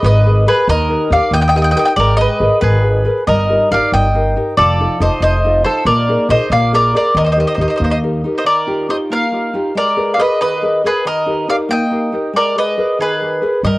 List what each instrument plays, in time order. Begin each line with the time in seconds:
Already playing: nylon-string guitar G#4 A#4 B4
0.03 upright bass G#1, nylon-string guitar D#3, mandolin B4 D#5
0.26 nylon-string guitar G#4 A#4 B4
0.46 nylon-string guitar G#4 A#4 B4, mandolin G#4 B4
0.68 upright bass D#2, nylon-string guitar D#3, mandolin A#4 D#5
0.89 nylon-string guitar D#4 G4 A#4
1.10 upright bass D#2, nylon-string guitar D#4 G4 A#4, mandolin D5 F5
1.31 upright bass D#2, nylon-string guitar A#3, mandolin D#5 G5
1.41 mandolin D#5 G5
1.48 mandolin D#5 G5
1.54 nylon-string guitar D#4 G4 A#4, mandolin D#5 G5
1.62 mandolin D#5 G5
1.71 nylon-string guitar D#4, mandolin D#5 G5
1.75 nylon-string guitar G4 A#4, mandolin G5
1.79 mandolin D#5
1.85 mandolin D#5 G5
1.96 upright bass G#1, nylon-string guitar G#3, mandolin A#4 D5
2.17 nylon-string guitar G#4 B4, mandolin D#5
2.21 mandolin B4
2.40 upright bass G#1, nylon-string guitar G#4 A#4 B4
2.61 upright bass G#1, nylon-string guitar D#3, mandolin G#4 B4
2.83 nylon-string guitar G#4 B4
3.05 nylon-string guitar G#4 A#4 B4
3.27 upright bass G1, nylon-string guitar G3, mandolin A#4 D#5
3.49 nylon-string guitar D#4 G4 A#4
3.71 upright bass G1, nylon-string guitar D#4 G4 A#4, mandolin D5 F5
3.92 upright bass G1, nylon-string guitar G3, mandolin D#5 G5
4.14 nylon-string guitar D#4 G4 A#4
4.36 nylon-string guitar D#4 G4 A#4
4.57 upright bass F1, nylon-string guitar F3, mandolin A4 D5
4.80 nylon-string guitar D#4 F4 A4
5.00 upright bass F1, nylon-string guitar D#4 F4 A4, mandolin C5 D#5
5.20 upright bass F1, nylon-string guitar C3, mandolin C5 D#5
5.45 nylon-string guitar D#4 F4 A4
5.64 nylon-string guitar D#4 F4 A4, mandolin A4 C5
5.85 upright bass A#1, nylon-string guitar A#3, mandolin A#4 D5
6.09 nylon-string guitar D#4 G#4 A#4
6.29 upright bass A#1, nylon-string guitar D#4 G#4 A#4, mandolin C5 D#5
6.50 upright bass A#1, nylon-string guitar A#3, mandolin D5 F5
6.72 nylon-string guitar G#4 A#4 D5, mandolin A#4 D5
6.94 nylon-string guitar G#4 A#4 D5, mandolin A#4 D5
7.15 upright bass D#2, nylon-string guitar D#3, mandolin A#4 D#5
7.25 mandolin C5 D#5
7.32 mandolin C5 D#5
7.37 nylon-string guitar D#4 G4 A#4, mandolin C5 D#5
7.47 mandolin C5 D#5
7.55 upright bass D#2, mandolin C5 D#5
7.59 nylon-string guitar D#4 G4 A#4, mandolin C5 D#5
7.68 mandolin C5 D#5
7.76 mandolin C5 D#5
7.80 upright bass D#2, nylon-string guitar A#3
7.84 mandolin C5 D#5
7.90 mandolin C5 D#5
8.03 nylon-string guitar D#4 G4 A#4
8.24 nylon-string guitar D#4 G4 A#4
8.38 mandolin C5 D#5
8.44 nylon-string guitar D#3, mandolin A#4 D5
8.67 nylon-string guitar D#4 F4 G4
8.89 nylon-string guitar D#4 F4 G4, mandolin C5 D#5
9.10 nylon-string guitar A#3, mandolin A#4 F5
9.32 nylon-string guitar D#4 F4 G4
9.54 nylon-string guitar D#4 F4 G4
9.75 nylon-string guitar G#3, mandolin A#4 D5
9.96 nylon-string guitar G#4 A#4 B4
10.14 nylon-string guitar G#4, mandolin D5 F5
10.18 nylon-string guitar A#4 B4, mandolin B4 D#5
10.41 nylon-string guitar D#3, mandolin B4 D#5
10.62 nylon-string guitar G#4 A#4 B4
10.84 nylon-string guitar G#4 A#4 B4, mandolin G#4 B4
11.05 nylon-string guitar D#3, mandolin A#4 D#5
11.26 nylon-string guitar D#4 G4 A#4
11.48 nylon-string guitar D#4 G4 A#4, mandolin D5 F5
11.69 nylon-string guitar A#3, mandolin D#5 G5
11.91 nylon-string guitar D#4 G4 A#4
12.12 nylon-string guitar D#4 G4 A#4
12.33 nylon-string guitar G#3, mandolin A#4 D5
12.56 nylon-string guitar G#4 B4, mandolin B4 D#5
12.77 nylon-string guitar G#4 A#4 B4
12.99 nylon-string guitar D#3, mandolin G#4 B4
13.21 nylon-string guitar G#4 B4
13.42 nylon-string guitar G#4 A#4 B4
13.63 upright bass G2, nylon-string guitar G3, mandolin A#4 D#5